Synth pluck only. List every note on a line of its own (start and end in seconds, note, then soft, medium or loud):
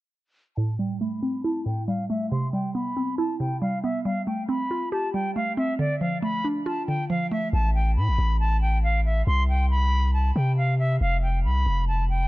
0.57 1.65 A2 loud
0.79 1.87 G3 medium
1.01 2.08 A3 medium
1.23 2.31 C4 medium
1.44 2.31 E4 loud
1.66 2.31 A2 medium
1.88 2.31 G3 medium
2.10 2.31 A3 medium
2.32 3.39 C3 loud
2.53 3.61 G3 medium
2.75 3.83 B3 medium
2.97 4.05 C4 medium
3.18 4.05 E4 loud
3.40 4.05 C3 medium
3.62 4.04 G3 medium
3.84 4.05 B3 medium
4.05 5.13 G3 medium
4.27 5.35 A3 medium
4.49 5.56 C4 medium
4.71 5.79 F4 medium
4.92 5.79 G4 loud
5.14 5.79 G3 medium
5.36 5.79 A3 medium
5.57 5.79 C4 medium
5.79 6.87 D3 medium
6.01 7.09 F3 medium
6.22 7.30 A3 medium
6.44 7.53 D4 medium
6.66 7.53 F4 medium
6.88 7.53 D3 medium
7.10 7.53 F3 medium
7.31 7.53 A3 medium